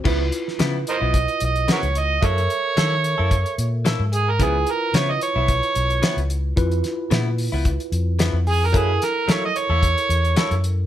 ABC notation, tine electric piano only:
X:1
M:4/4
L:1/8
Q:"Swing 16ths" 1/4=111
K:Gb
V:1 name="Tine electric piano"
[=EFc]8 | [=AB_f]8 | [=EFc]8 | [=EFc]8 |
[_F=AB]8 |]